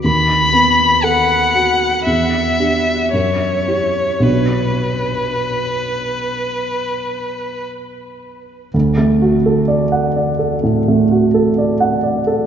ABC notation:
X:1
M:4/4
L:1/16
Q:1/4=58
K:Bm
V:1 name="Violin"
b4 f4 e4 c4 | B12 z4 | [K:D] z16 |]
V:2 name="Grand piano"
^D,,2 B,2 A2 F2 E,,2 [=DG]2 F,,2 [EG]2 | [B,,,B,DF]16 | [K:D] D,, A, F A d f d A A,, A, F A d f d A |]